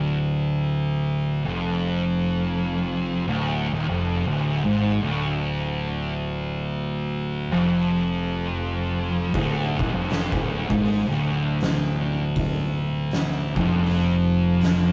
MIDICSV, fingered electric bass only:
0, 0, Header, 1, 2, 480
1, 0, Start_track
1, 0, Key_signature, -1, "minor"
1, 0, Tempo, 759494
1, 148, Time_signature, 4, 2, 24, 8
1, 4947, Tempo, 753769
1, 9466, End_track
2, 0, Start_track
2, 0, Title_t, "Fingered electric bass"
2, 0, Program_c, 0, 33
2, 0, Note_on_c, 0, 26, 91
2, 891, Note_off_c, 0, 26, 0
2, 918, Note_on_c, 0, 29, 92
2, 2046, Note_off_c, 0, 29, 0
2, 2070, Note_on_c, 0, 26, 92
2, 2337, Note_off_c, 0, 26, 0
2, 2354, Note_on_c, 0, 27, 94
2, 2445, Note_off_c, 0, 27, 0
2, 2456, Note_on_c, 0, 29, 95
2, 2678, Note_off_c, 0, 29, 0
2, 2696, Note_on_c, 0, 26, 98
2, 2918, Note_off_c, 0, 26, 0
2, 2935, Note_on_c, 0, 32, 96
2, 3157, Note_off_c, 0, 32, 0
2, 3175, Note_on_c, 0, 26, 98
2, 4729, Note_off_c, 0, 26, 0
2, 4749, Note_on_c, 0, 29, 92
2, 5881, Note_off_c, 0, 29, 0
2, 5910, Note_on_c, 0, 26, 89
2, 6177, Note_off_c, 0, 26, 0
2, 6197, Note_on_c, 0, 27, 85
2, 6286, Note_off_c, 0, 27, 0
2, 6293, Note_on_c, 0, 29, 96
2, 6516, Note_off_c, 0, 29, 0
2, 6535, Note_on_c, 0, 26, 89
2, 6757, Note_off_c, 0, 26, 0
2, 6775, Note_on_c, 0, 32, 84
2, 6998, Note_off_c, 0, 32, 0
2, 7015, Note_on_c, 0, 26, 88
2, 8570, Note_off_c, 0, 26, 0
2, 8601, Note_on_c, 0, 29, 90
2, 9466, Note_off_c, 0, 29, 0
2, 9466, End_track
0, 0, End_of_file